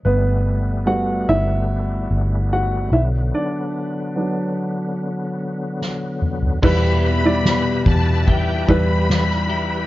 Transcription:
<<
  \new Staff \with { instrumentName = "Violin section" } { \time 4/4 \key e \minor \tempo 4 = 73 r1 | r1 | b''8 b''4 a''8 g''8 b''4. | }
  \new Staff \with { instrumentName = "Grand piano" } { \time 4/4 \key e \minor <b b'>4 <fis' fis''>8 <e' e''>4. <fis' fis''>8 <e' e''>8 | <d' d''>2. r4 | <g e' b'>8. <g e' d''>4.~ <g e' d''>16 <g e' b'>4. | }
  \new Staff \with { instrumentName = "Grand piano" } { \time 4/4 \key e \minor r4 <g a b>2~ <g a b>8 r8 | r4 <fis b d'>4. r4. | e4. r2 r8 | }
  \new Staff \with { instrumentName = "Tonewheel organ" } { \time 4/4 \key e \minor <g a b>2.~ <g a b>8 <d fis b>8~ | <d fis b>1 | <g' b' e'' b''>1 | }
  \new Staff \with { instrumentName = "Clean electric guitar" } { \clef bass \time 4/4 \key e \minor r1 | r1 | <e, b, e g e' g'>2 <e g e' g'>4. <e g e' g'>8 | }
  \new Staff \with { instrumentName = "Fingered electric bass" } { \clef bass \time 4/4 \key e \minor g,,4. g,,4 g,,4 b,,8 | r1 | e,4. e,4 e,4. | }
  \new DrumStaff \with { instrumentName = "Drums" } \drummode { \time 4/4 r4 r4 r4 r4 | r4 r4 r4 sn8 toml16 tomfh16 | <cymc bd>8 cymr8 <cymr sn>8 <bd cymr>8 <bd cymr>16 cymr16 <bd cymr>8 <cymr sn>16 sn16 cymr8 | }
>>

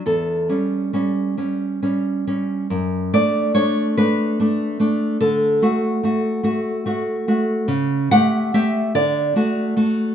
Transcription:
\new Staff \with { instrumentName = "Nylon-string guitar" } { \time 6/8 \key d \major \tempo 4. = 48 << { a'2~ a'8 r8 | r8 d''8 cis''8 b'4. | a'2~ a'8 r8 | r8 fis''8 e''8 d''4. | } \\ { e,8 <g cis'>8 <g cis'>8 <g cis'>8 <g cis'>8 <g cis'>8 | fis,8 <a d'>8 <a d'>8 <a d'>8 <a d'>8 <a d'>8 | d8 <a fis'>8 <a fis'>8 <a fis'>8 <a fis'>8 <a fis'>8 | cis8 <a g'>8 <a g'>8 d8 <a fis'>8 <a fis'>8 | } >> }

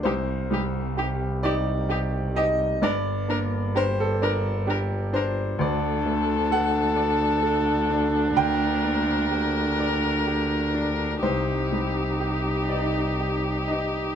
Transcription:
<<
  \new Staff \with { instrumentName = "Violin" } { \time 6/8 \key g \minor \tempo 4. = 43 g'8 g'8 g'8 g'8 g'8 g'8 | bes'8 bes'8 bes'8 bes'8 bes'8 bes'8 | a'2. | bes'2. |
g'2. | }
  \new Staff \with { instrumentName = "Upright piano" } { \time 6/8 \key g \minor << { c''4. d''4 ees''8 | d''4 c''16 a'16 bes'4 c''8 | d''4 fis''2 | g''4. r4. |
c''4. d''4 ees''8 | } \\ { c,8 g8 g'8 ees'8 g'8 ees'8 | g,8 bes8 g'8 d''8 g'8 d'8 | d,8 a8 a'8 d''8 a'8 d'8 | d,8 bes8 g'8 d''8 g'8 d'8 |
c,8 g8 g'8 ees'8 g'8 ees'8 | } >> }
  \new Staff \with { instrumentName = "Viola" } { \time 6/8 \key g \minor ees'8 ees'8 ees'8 ees'8 ees'8 ees'8 | d'8 d'8 d'8 d'8 d'8 d'8 | d'2.~ | d'2. |
ees'2. | }
  \new Staff \with { instrumentName = "Double bass" } { \clef bass \time 6/8 \key g \minor c,2. | g,,2. | d,2.~ | d,2. |
c,2. | }
>>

